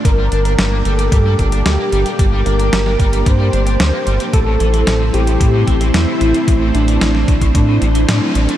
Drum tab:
HH |x-xxx-xxx-xxx-xx|x-xxx-xxx-xxx-xx|x-xxx-xxx-xxx-xx|x-xxx-xxx-xxx-xx|
SD |----o-------o---|----oo------o---|----o-------o---|----oo------o---|
BD |o-------o-o-----|o-----o-o-------|o-------o-o-----|o-----ooo-------|